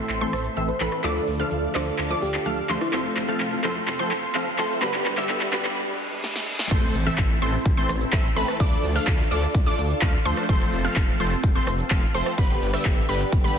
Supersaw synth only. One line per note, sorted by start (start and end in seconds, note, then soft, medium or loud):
0.21 0.34 E3 medium
0.21 0.34 A3 medium
0.21 0.34 C4 medium
0.21 0.34 A4 medium
0.21 0.34 C5 medium
0.57 0.70 E3 medium
0.57 0.70 A3 medium
0.57 0.70 C4 medium
0.57 0.70 A4 medium
0.57 0.70 E5 loud
0.81 1.01 E3 loud
0.81 1.01 A3 medium
0.81 1.01 C4 medium
0.81 1.01 A4 medium
0.81 1.01 B4 loud
1.04 1.37 F3 medium
1.04 1.37 A3 medium
1.04 1.37 D4 medium
1.04 1.37 A4 medium
1.04 1.37 D5 loud
1.40 1.72 F3 medium
1.40 1.72 A3 medium
1.40 1.72 D4 medium
1.40 1.72 A4 medium
1.40 1.72 F5 loud
1.75 1.88 F3 medium
1.75 1.88 A3 medium
1.75 1.88 D4 medium
1.75 1.88 A4 medium
1.75 1.88 D5 medium
2.10 2.23 F3 medium
2.10 2.23 A3 medium
2.10 2.23 D4 medium
2.10 2.23 A4 medium
2.10 2.23 D5 loud
2.46 2.59 F3 medium
2.46 2.59 A3 medium
2.46 2.59 D4 medium
2.46 2.59 A4 medium
2.46 2.59 F5 medium
2.69 2.90 F3 medium
2.69 2.90 A3 medium
2.69 2.90 D4 medium
2.69 2.90 A4 medium
2.69 2.90 C5 loud
2.93 3.26 F3 loud
2.93 3.26 A3 medium
2.93 3.26 C4 medium
2.93 3.26 A4 medium
2.93 3.26 C5 loud
3.29 3.61 F3 medium
3.29 3.61 A3 medium
3.29 3.61 C4 medium
3.29 3.61 A4 medium
3.29 3.61 F5 loud
3.64 3.77 F3 medium
3.64 3.77 A3 medium
3.64 3.77 C4 medium
3.64 3.77 A4 medium
3.64 3.77 C5 medium
3.99 4.12 F3 medium
3.99 4.12 A3 medium
3.99 4.12 C4 medium
3.99 4.12 A4 medium
3.99 4.12 C5 medium
4.35 4.48 F3 medium
4.35 4.48 A3 medium
4.35 4.48 C4 medium
4.35 4.48 A4 medium
4.35 4.48 F5 medium
4.59 4.79 F3 loud
4.59 4.79 A3 loud
4.59 4.79 C4 medium
4.59 4.79 A4 medium
4.59 4.79 C5 loud
4.82 5.15 D3 loud
4.82 5.15 G3 medium
4.82 5.15 B3 medium
4.82 5.15 G4 medium
4.82 5.15 B4 loud
5.18 5.50 D3 medium
5.18 5.50 G3 medium
5.18 5.50 B3 medium
5.18 5.50 G4 medium
5.18 5.50 E5 loud
5.53 5.66 D3 medium
5.53 5.66 G3 medium
5.53 5.66 B3 medium
5.53 5.66 G4 medium
5.53 5.66 B4 medium
6.71 7.04 E3 loud
6.71 7.04 A3 medium
6.71 7.04 C4 medium
6.71 7.04 A4 medium
6.71 7.04 C5 loud
7.06 7.39 E3 medium
7.06 7.39 A3 medium
7.06 7.39 C4 medium
7.06 7.39 A4 medium
7.06 7.39 E5 loud
7.42 7.55 E3 medium
7.42 7.55 A3 medium
7.42 7.55 C4 medium
7.42 7.55 A4 medium
7.42 7.55 C5 medium
7.77 7.90 E3 medium
7.77 7.90 A3 medium
7.77 7.90 C4 medium
7.77 7.90 A4 medium
7.77 7.90 C5 loud
8.13 8.26 E3 medium
8.13 8.26 A3 medium
8.13 8.26 C4 medium
8.13 8.26 A4 medium
8.13 8.26 E5 medium
8.36 8.57 E3 loud
8.36 8.57 A3 medium
8.36 8.57 C4 medium
8.36 8.56 A4 medium
8.36 8.57 B4 loud
8.60 8.93 F3 loud
8.60 8.93 A3 medium
8.60 8.93 D4 medium
8.60 8.93 A4 medium
8.60 8.93 D5 loud
8.96 9.28 F3 medium
8.96 9.28 A3 medium
8.96 9.28 D4 medium
8.96 9.28 A4 medium
8.96 9.28 F5 loud
9.31 9.44 F3 medium
9.31 9.44 A3 medium
9.31 9.44 D4 medium
9.31 9.44 A4 medium
9.31 9.44 D5 medium
9.66 9.79 F3 medium
9.66 9.79 A3 medium
9.66 9.79 D4 medium
9.66 9.79 A4 medium
9.66 9.79 D5 medium
10.02 10.15 F3 medium
10.02 10.15 A3 medium
10.02 10.15 D4 medium
10.02 10.15 A4 medium
10.02 10.15 F5 loud
10.25 10.46 F3 loud
10.25 10.46 A3 loud
10.25 10.46 D4 medium
10.25 10.46 A4 loud
10.25 10.46 C5 loud
10.49 10.82 F3 medium
10.49 10.82 A3 medium
10.49 10.82 C4 medium
10.49 10.82 A4 medium
10.49 10.82 C5 loud
10.84 11.17 F3 medium
10.84 11.17 A3 medium
10.84 11.17 C4 medium
10.84 11.17 A4 medium
10.84 11.17 F5 loud
11.20 11.33 F3 medium
11.20 11.33 A3 medium
11.20 11.33 C4 medium
11.20 11.33 A4 medium
11.20 11.33 C5 medium
11.55 11.68 F3 medium
11.55 11.68 A3 medium
11.55 11.68 C4 medium
11.55 11.68 A4 medium
11.55 11.68 C5 loud
11.91 12.04 F3 medium
11.91 12.04 A3 medium
11.91 12.04 C4 medium
11.91 12.04 A4 medium
11.91 12.04 F5 loud
12.14 12.35 F3 loud
12.14 12.35 A3 medium
12.14 12.34 C4 medium
12.14 12.35 A4 medium
12.14 12.34 C5 loud
12.38 12.71 D3 loud
12.38 12.71 G3 medium
12.38 12.71 B3 medium
12.38 12.71 G4 medium
12.38 12.71 B4 loud
12.74 13.06 D3 medium
12.74 13.06 G3 medium
12.74 13.06 B3 medium
12.74 13.06 G4 medium
12.74 13.06 E5 loud
13.09 13.22 D3 medium
13.09 13.22 G3 medium
13.09 13.22 B3 medium
13.09 13.22 G4 medium
13.09 13.22 B4 medium
13.44 13.57 D3 medium
13.44 13.57 G3 medium
13.44 13.57 B3 medium
13.44 13.57 G4 medium
13.44 13.57 B4 medium